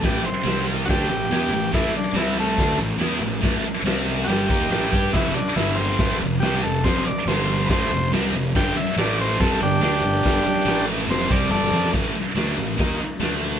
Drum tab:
CC |----------------|x---------------|----------------|x---------------|
HH |o---o---o---o---|----o---o---o---|o---o---o---o---|----o---o---o---|
SD |o---o---o---o---|o---o---o---o---|o---o---o---o---|o---o---o---o---|
BD |o-------o-------|o-------o-------|o---------o---o-|o-------o-------|

CC |----------------|x---------------|----------------|x---x---x---x---|
HH |o---o---o---o---|----o---o---o---|o---o---o-------|----------------|
SD |o---o---o---o---|o---o---o---o---|o---o---o---oooo|o---o---o---o---|
BD |o-------o-------|o-------o-------|o---------o-----|o-------o-------|